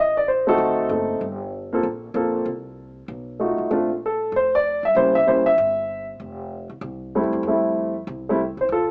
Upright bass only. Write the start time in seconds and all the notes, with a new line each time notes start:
Already playing: A1
0.58 D2
0.89 F#1
1.21 G1
1.83 A#1
2.14 A#1
2.45 C2
3.08 B1
3.58 B1
3.71 A#1
4.32 F1
4.83 G2
4.95 C2
5.58 G1
6.20 F1
6.70 C2
6.81 C2
7.23 F2
7.33 E2
7.43 F2
8.07 C2
8.57 C2
8.69 D2